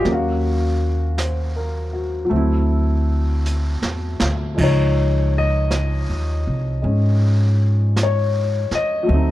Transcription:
0.00 F#3
0.04 D#2 A#3 C#4, brush sweep, snare
0.12 F#4 F5
1.18 C5, brush sweep, snare, hi-hat pedal
1.56 A#4
1.93 F#4
2.25 F#3
2.29 D2 A3 C4, brush sweep
2.37 E4
3.45 hi-hat pedal
3.82 E2, snare
4.20 D2, snare
4.55 C#2 F3 G#3, brush sweep, kick, crash
4.60 D#4 C#5
5.38 D#5
5.71 brush sweep, snare, hi-hat pedal
6.09 D#2
6.47 C2
6.82 G#2 G#3 C#4, brush sweep
7.96 brush sweep, snare, hi-hat pedal
8.03 C#5
8.71 muted upright bass stroke, snare
8.75 D#5
9.03 F#3 A3
9.09 D2 C4, brush sweep
9.14 D#4

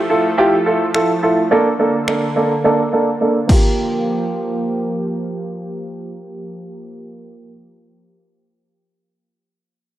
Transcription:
Already playing: F3 A3 A4
0.09 E4 F4 A4
0.38 E4 F4 G4
0.66 E4 F4 A4
0.94 E4 F4 A4, finger snap
1.23 E4 F4 A4
1.51 D3 A#3 D4 A4
1.79 A#3 D4 A4
2.08 A#3 D4 A4, finger snap
2.36 A#3 D4 A4
2.64 A#3 D4 A4
2.93 A#3 D4 A4
3.21 A#3 D4 A4
3.47 F3 A#3 F4 G4, kick, crash
3.51 G4

